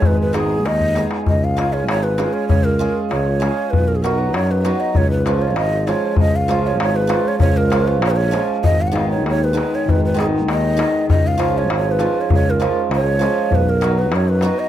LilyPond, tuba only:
\new Staff \with { instrumentName = "Tuba" } { \clef bass \time 2/4 \key des \mixolydian \tempo 4 = 98 aes,,4 ees,4 | des,4 aes,,4 | des,4 des,4 | ces,4 ges,4 |
des,4 aes,,4 | des,4 aes,,4 | des,4 bes,,4 | aes,,4 ees,4 |
aes,,4 ees,4 | des,4 aes,,4 | des,4 des,4 | ces,4 ges,4 | }